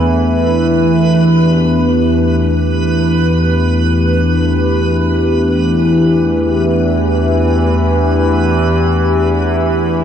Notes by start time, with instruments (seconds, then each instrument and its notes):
Already playing: synth drone E2 E3, analog synth pad E3 A3 D4 A4 B4, synth texture B4
0.40 analog synth pad G4